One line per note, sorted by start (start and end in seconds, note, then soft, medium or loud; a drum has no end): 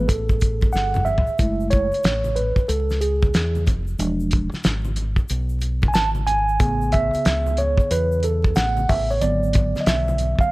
0.00 1.35 G#4 soft
0.08 0.71 A1 medium
0.08 1.02 A4 medium
0.08 kick medium
0.08 closed hi-hat medium
0.08 shaker medium
0.29 kick medium
0.29 shaker soft
0.40 kick medium
0.40 closed hi-hat medium
0.40 shaker soft
0.61 kick medium
0.61 high conga medium
0.61 shaker soft
0.73 1.25 G1 medium
0.73 1.07 F#5 medium
0.73 snare soft
0.73 shaker medium
0.94 mid tom medium
0.94 high conga medium
0.94 shaker soft
1.05 1.67 E5 medium
1.05 low conga medium
1.05 shaker medium
1.18 floor tom medium
1.27 shaker soft
1.38 1.90 F#1 medium
1.38 1.86 G#3 soft
1.38 1.86 A3 soft
1.38 1.86 E4 medium
1.38 kick loud
1.38 closed hi-hat medium
1.38 shaker medium
1.60 shaker soft
1.70 2.38 C#5 loud
1.70 kick medium
1.70 closed hi-hat medium
1.70 shaker soft
1.92 muted fingered electric bass stroke soft
1.92 closed hi-hat soft
1.92 high conga soft
1.92 shaker soft
2.03 2.55 A1 medium
2.03 snare loud
2.03 closed hi-hat medium
2.03 high conga soft
2.03 shaker medium
2.24 high conga medium
2.24 shaker soft
2.36 2.70 B4 medium
2.36 closed hi-hat medium
2.36 low conga soft
2.36 shaker soft
2.56 kick medium
2.56 shaker soft
2.68 3.31 C#2 loud
2.68 2.99 A4 medium
2.68 closed hi-hat medium
2.68 shaker medium
2.90 snare soft
2.90 shaker soft
3.01 3.63 G#4 medium
3.01 closed hi-hat medium
3.01 shaker soft
3.22 kick loud
3.22 high conga medium
3.22 shaker soft
3.34 3.65 E2 medium
3.34 snare loud
3.34 closed hi-hat medium
3.34 shaker medium
3.55 high conga medium
3.55 shaker soft
3.67 3.98 F1 medium
3.67 kick medium
3.67 closed hi-hat medium
3.67 low conga medium
3.67 shaker medium
3.87 shaker soft
3.99 4.50 E1 medium
3.99 4.46 F3 soft
3.99 4.46 G#3 soft
3.99 4.47 D4 medium
3.99 closed hi-hat medium
3.99 shaker medium
4.20 shaker soft
4.31 kick medium
4.31 closed hi-hat medium
4.31 shaker soft
4.52 muted fingered electric bass stroke soft
4.52 snare soft
4.52 high conga soft
4.52 shaker soft
4.63 5.16 G#1 medium
4.63 snare loud
4.63 closed hi-hat medium
4.63 high conga soft
4.63 shaker medium
4.85 high conga medium
4.85 shaker soft
4.96 closed hi-hat medium
4.96 low conga medium
4.96 shaker soft
5.16 muted fingered electric bass stroke soft
5.16 kick medium
5.16 shaker soft
5.29 5.92 B1 medium
5.29 closed hi-hat medium
5.29 shaker medium
5.49 shaker soft
5.61 closed hi-hat medium
5.61 shaker soft
5.82 kick loud
5.82 high conga medium
5.82 shaker soft
5.88 5.94 G#5 medium
5.93 6.57 G#1 medium
5.93 6.09 A5 loud
5.93 snare loud
5.93 closed hi-hat medium
5.93 shaker medium
6.15 high conga medium
6.15 shaker soft
6.27 6.94 G#5 loud
6.27 closed hi-hat medium
6.27 low conga medium
6.27 shaker medium
6.48 shaker soft
6.60 7.11 A1 loud
6.60 9.17 C#3 medium
6.60 9.17 B3 medium
6.60 9.17 G#4 soft
6.60 kick loud
6.60 closed hi-hat medium
6.60 shaker medium
6.81 shaker soft
6.92 7.60 E5 loud
6.92 kick medium
6.92 closed hi-hat medium
6.92 shaker soft
7.13 muted fingered electric bass stroke soft
7.13 closed hi-hat soft
7.13 high conga soft
7.13 shaker soft
7.25 7.77 C#2 medium
7.25 snare loud
7.25 closed hi-hat medium
7.25 high conga soft
7.25 shaker medium
7.46 high conga medium
7.46 shaker soft
7.57 7.92 C#5 medium
7.57 closed hi-hat medium
7.57 low conga medium
7.57 shaker soft
7.78 muted fingered electric bass stroke medium
7.78 kick medium
7.78 shaker soft
7.91 8.53 E2 medium
7.91 8.25 B4 loud
7.91 closed hi-hat loud
7.91 shaker medium
8.12 shaker soft
8.23 8.57 A4 medium
8.23 closed hi-hat medium
8.23 shaker soft
8.44 kick loud
8.44 high conga medium
8.44 shaker soft
8.55 8.87 A1 medium
8.55 8.90 F#5 loud
8.55 snare loud
8.55 closed hi-hat medium
8.55 shaker medium
8.77 high conga medium
8.77 shaker soft
8.89 9.20 A1 medium
8.89 9.11 E5 medium
8.89 kick medium
8.89 open hi-hat medium
8.89 low conga medium
8.89 shaker soft
9.10 9.22 C#5 medium
9.10 shaker soft
9.21 9.73 G#1 loud
9.21 10.48 D3 medium
9.21 10.48 F#3 soft
9.21 10.48 B3 soft
9.21 9.84 D5 medium
9.21 closed hi-hat medium
9.21 shaker medium
9.43 shaker soft
9.53 kick loud
9.53 closed hi-hat medium
9.53 low conga medium
9.53 shaker soft
9.75 muted fingered electric bass stroke soft
9.75 snare soft
9.75 high conga soft
9.75 shaker soft
9.81 9.86 D#5 medium
9.86 10.38 B1 medium
9.86 10.42 E5 medium
9.86 snare loud
9.86 closed hi-hat medium
9.86 high conga soft
9.86 shaker medium
10.08 high conga medium
10.08 shaker soft
10.18 closed hi-hat medium
10.18 low conga medium
10.18 shaker soft
10.39 10.52 F5 medium
10.39 kick medium
10.39 shaker soft